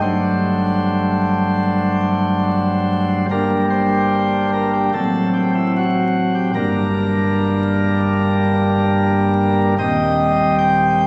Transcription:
0.01 G1 G2 F#3 A3 D4 C5
3.31 G1 G2 G3 A#3 D4 A#4
3.70 C5
4.54 A#4
4.73 G4
4.94 A1 A2 F#3 C4 A4
5.34 G4
5.55 E4
5.77 F#4
6.35 G4
6.55 G1 G2 G3 A#3 D4 A#4
9.79 D#1 D#2 G3 C4 G4 D#5
10.58 G5

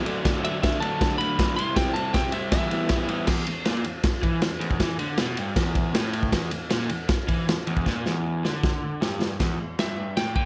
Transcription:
0.05 D3 F#3 A3 D4, ride
0.24 D3 F#3 A3 D4, kick, snare, ride
0.43 D3 F#3 A3 D4 E5, ride
0.62 D3 F#3 A3 D4 E5, kick, snare, ride
0.80 D3 F#3 A3 D4 A5, ride
1.01 D3 F#3 A3 D4, kick, snare, ride
1.18 D3 F#3 A3 D4 B5, ride
1.38 D3 F#3 A3 D4, kick, snare, ride
1.56 C3 G3 C4 E4 C6, ride
1.75 C3 G3 C4 E4 G5, kick, snare, ride
1.94 C3 G3 C4 E4 A5, ride
2.13 C3 G3 C4 E4 G5, kick, snare, ride
2.32 C3 G3 C4 E4 E5, ride
2.52 E3 G3 B3 E4 E5, kick, snare, ride
2.71 E3 G3 B3 E4, ride
2.89 E3 G3 B3 E4, kick, snare, ride
3.09 E3 G3 B3 E4, ride
3.27 E2, kick, snare, crash
3.47 E2, ride
3.65 A#2, snare, ride
3.84 E2, ride
4.03 muted overdriven electric guitar stroke, kick, snare, ride
4.22 E3, kick, ride
4.42 E2, snare, ride
4.60 E2, ride
4.71 kick
4.80 E3, kick, snare, ride
4.99 D3, ride
5.17 B2, snare, ride
5.37 G2, ride
5.56 E2, kick, snare, ride
5.75 kick, ride
5.94 A2, snare, ride
6.13 ride
6.23 kick
6.32 E2, kick, snare, ride
6.51 E2, ride
6.70 A#2, snare, ride
6.89 E2, ride
7.09 muted overdriven electric guitar stroke, kick, snare, ride
7.28 E3, kick, ride
7.48 E2, snare, ride
7.67 E2, ride
7.77 kick
7.85 A#2, kick, snare
8.06 E2, snare
8.44 D3, snare
8.63 kick, snare
9.01 G2, snare
9.22 snare
9.40 E2, kick, snare, crash
9.61 E2
9.79 G2 E5, snare, crash
10.17 A2 G5, snare, crash
10.35 A#2 G5, kick

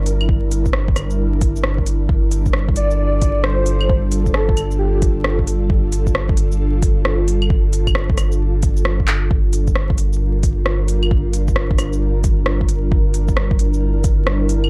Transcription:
Already playing: G1 G3 D4 E4 A#4
0.06 open hi-hat, shaker
0.21 claves
0.29 kick
0.51 open hi-hat, shaker
0.65 kick, shaker
0.73 cross-stick
0.88 kick
0.96 cross-stick, open hi-hat, claves, shaker
1.10 shaker
1.41 kick, open hi-hat, shaker
1.56 shaker
1.63 cross-stick
1.78 kick
1.86 open hi-hat, shaker
2.08 G1 F4 A4, kick
2.31 open hi-hat, shaker
2.46 kick, shaker
2.53 cross-stick
2.69 kick
2.76 D5, open hi-hat, shaker
2.91 shaker
2.99 D5
3.22 kick, open hi-hat, shaker
3.44 C5, cross-stick
3.66 C5, open hi-hat, shaker
3.81 claves
3.89 kick
4.12 open hi-hat, shaker
4.26 kick, shaker
4.34 A4, cross-stick
4.49 kick
4.57 open hi-hat, claves, shaker
4.71 shaker
4.79 G4
4.94 G4
5.02 kick, open hi-hat, shaker
5.24 cross-stick
5.39 kick
5.47 open hi-hat, shaker
5.70 kick
5.92 open hi-hat, shaker
6.07 kick, shaker
6.15 cross-stick
6.29 kick
6.37 open hi-hat, shaker
6.52 shaker
6.82 kick, open hi-hat, shaker
7.05 cross-stick
7.28 open hi-hat, shaker
7.42 claves
7.50 kick
7.73 open hi-hat, shaker
7.87 kick, claves, shaker
7.95 cross-stick
8.10 kick
8.18 cross-stick, open hi-hat, claves, shaker
8.32 shaker
8.63 kick, open hi-hat, shaker
8.77 shaker
8.85 cross-stick
9.00 kick
9.08 clap, open hi-hat, shaker
9.31 G1 G3 D4 F4 A#4, kick
9.53 open hi-hat, shaker
9.67 kick, shaker
9.75 cross-stick
9.90 kick
9.98 open hi-hat, shaker
10.13 shaker
10.43 kick, open hi-hat, shaker
10.66 cross-stick
10.88 open hi-hat, shaker
11.03 claves
11.11 kick
11.33 open hi-hat, shaker
11.48 kick, shaker
11.56 cross-stick
11.71 kick
11.79 cross-stick, open hi-hat, claves, shaker
11.93 shaker
12.24 kick, open hi-hat, shaker
12.46 cross-stick
12.61 kick
12.69 open hi-hat, shaker
12.92 E4, kick
13.14 open hi-hat, shaker
13.28 kick, shaker
13.37 cross-stick
13.51 kick
13.59 open hi-hat, shaker
13.74 shaker
14.04 kick, open hi-hat, shaker
14.27 cross-stick
14.49 open hi-hat, shaker
14.64 claves

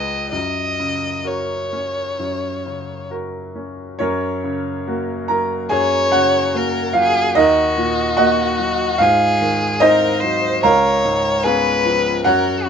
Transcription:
Already playing: C#2 G#4 B4 D#5
0.31 F#2 D#5
0.79 C#3
1.24 F#4 A#4 C#5
1.73 C#4
2.19 F#2
2.66 C#3
3.10 F#4 A#4
3.55 C#4
3.99 F#2 C#4 A#4 C#5
4.44 C#3
4.87 A#3 F#4
5.28 F#3 A#4 A#5
5.69 F#2 G#4 C#5 G#5
6.12 C#3 F#4 C#5 F#5
6.54 A#3 F#4 A#4
6.93 F#3 F4 F5
6.99 G#4
7.35 D#2 D#4 F#4 A#4 D#5
7.77 A#2
8.17 A#3 F#4 D#5 F#5
8.59 F#3
8.98 G#2 F4 G#4 F5
9.41 D#3
9.80 C4 D#4 A#4 C5 D#5
10.20 F#3 C5
10.63 C#2 A#4 C#5 F5 A#5
11.05 G#2
11.44 B3 C#4 G#4 B4 F5 G#5
11.85 F3
12.24 F#2 F#4 A#4 C#5 F#5
12.65 C#3 F#4

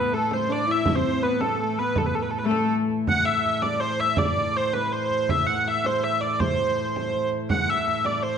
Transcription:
Already playing: A2 E3 B3 B4
0.12 A3 A4
0.31 C5, frame drum
0.49 D4 D5
0.68 E4 E5, frame drum
0.86 E4 E5, frame drum
0.94 C4 C5
1.22 B3 B4
1.41 A3 A4, frame drum
1.59 A3 A4
1.78 B3 B4, frame drum
1.96 A4, frame drum
2.06 B4
2.15 A4, frame drum
2.22 B4
2.30 A4
2.38 B4
2.44 A3 A4
2.51 frame drum
2.90 frame drum
3.07 A2 E3 F#5, frame drum
3.25 E5
3.45 E5, frame drum
3.62 D5, frame drum
3.80 C5
4.00 E5, frame drum
4.17 D5, frame drum
4.54 C5, frame drum
4.73 B4, frame drum
4.92 C5
5.10 frame drum
5.29 E5, frame drum
5.47 F#5
5.67 E5, frame drum
5.84 C5, frame drum
6.03 E5
6.21 D5, frame drum
6.40 C5, frame drum
6.59 frame drum
6.96 frame drum
7.14 frame drum
7.33 frame drum
7.50 A2 E3 F#5, frame drum
7.70 E5
7.87 E5, frame drum
8.05 D5, frame drum
8.23 C5

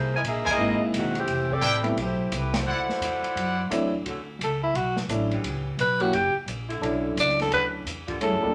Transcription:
Already playing: C2 A#3 E4 G#4 C5
0.15 E4 A#4 D#5 G#5
0.23 A#1, hi-hat pedal, ride
0.27 A#3 D#4 G#4 E5
0.45 E4 A#4 C5 G#5, muted upright bass stroke, kick, crash
0.50 A#3 E4 G#4 D#5
0.58 G#1 G#3 A#3 C4 D#4 E4
0.80 muted upright bass stroke
0.93 E1, hi-hat pedal, ride
0.97 D#3 G#3 C4 F#4
1.15 E3 A3 C4 G4, ride
1.27 F1, ride
1.50 C4 G4 A4 D5, kick
1.61 A1 E4 A4 B4 G5, hi-hat pedal, ride
1.83 G3 A3 B3 C4 E4, ride
1.96 B1, ride
2.00 A3 E4 G4 C5
2.32 C2 A3 E4 G4 B4, hi-hat pedal, ride
2.54 A3 E4 F#4 C5, snare, ride
2.65 D2 E4 C5 D5 F#5
2.88 muted upright bass stroke, snare
3.00 E2, hi-hat pedal, ride
3.22 muted upright bass stroke, ride
3.35 F#2, ride
3.70 E2 F#3 A3 C4 D4 E4, hi-hat pedal, ride
4.04 D2 D3 A3 C#4 F#4, ride
4.39 C#2, hi-hat pedal, ride
4.44 A4
4.63 E4
4.74 B1 F#4, ride
4.97 snare
5.08 A1 F#3 A3 C#4 D4 E4, hi-hat pedal, ride
5.31 E3 B3 C#4 G4, ride
5.43 C#2, ride
5.77 B1 B4, hi-hat pedal, ride
6.00 F#3 A#3 C#4 E4 F#4 G4, ride
6.12 F#1 G4, ride
6.34 muted upright bass stroke
6.46 A#1, hi-hat pedal, ride
6.68 D3 A3 E4, ride
6.81 B1 F#3 C#4 D4 E4 A4, ride
7.16 C#2, hi-hat pedal, ride
7.20 D5
7.29 snare
7.40 A4, snare, ride
7.51 D2 B4, ride
7.85 E2, hi-hat pedal, ride
8.07 D3 G3 A#3 F4, kick, ride
8.20 G2 F#3 A3 C#4 E4 G#4 A4, ride
8.31 F2
8.43 D2 G3 A#3 D4 F4 A4

